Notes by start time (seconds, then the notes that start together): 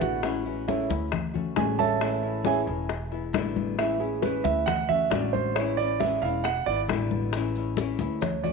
Already playing: A1 B2 D3 G#3 B3 E4
0.01 F#4 F#5, high bongo, low conga
0.23 E3 G#3 C#4 E4, high bongo, high conga
0.45 G#3 C#4 E4, high conga
0.68 E3 G#3 C#4 E4 A4 C#5 E5, high bongo, high conga
0.90 D2 G#3 C#4 E4, high conga
1.12 muted nylon-string guitar stroke, high bongo, high conga, low conga
1.34 A3 C#4 F#4, high conga, low conga
1.56 A1 D3 A3 C#4 F#4 G#4 G#5, high bongo, low bongo, high conga
1.79 A4 C#5 E5 A5, high conga
2.00 E3 G#3 C#4 E4, high bongo, high conga
2.23 G#3 C#4 E4, high conga
2.44 E3 G#3 C#4 E4 G#4 C#5 E5 G#5, high bongo, high conga
2.67 E1 G#3 C#4 E4, high bongo, high conga
2.89 muted nylon-string guitar stroke, high bongo, high conga
3.12 G#3 B3 E4, high bongo, high conga
3.33 A1 B2 D3 G#3 B3 E4, high bongo, low bongo, high conga
3.56 high bongo, high conga
3.78 E3 G#3 C#4 E4 E5, high bongo, high conga
4.00 G#3 C#4 E4 G#4, high conga
4.22 E3 G#3 C#4 E4 B4, high bongo, high conga
4.44 D2 G#3 C#4 E4 E5, high conga
4.66 F#5, muted nylon-string guitar stroke, high bongo, high conga, low conga
4.89 A3 C#4 F#4 E5, high conga, low conga
5.10 A1 D3 A3 C#4 F#4 D5, high bongo, low bongo, high conga
5.33 C5, high conga
5.55 E3 G#3 C#4 C#5, high bongo, high conga
5.59 E4
5.77 C#4 E4 D5, high conga
5.82 G#3
6.00 E3 G#3 C#4 E5, high bongo, high conga
6.04 E4
6.22 E1 E4 F5, high bongo, high conga
6.26 G#3 C#4
6.44 F#5, muted nylon-string guitar stroke, high bongo, high conga
6.66 G#1 E4 D5, high bongo, high conga
6.71 G#3 B3
6.88 A1 B2 D3 G#3 B3, high bongo, low bongo, high conga
6.93 E4
7.11 high bongo, high conga
7.33 E3 G#3 C#4, high bongo, maracas
7.37 E4
7.55 C#4 E4, high conga, maracas
7.59 G#3
7.77 E3 G#3 C#4, high bongo, high conga, maracas
7.81 E4
7.99 D2 G#3 C#4 E4, high conga, maracas
8.22 C#5, muted nylon-string guitar stroke, high bongo, high conga, low conga, maracas
8.43 A3 C#4 F#4 D5, high conga, low conga, maracas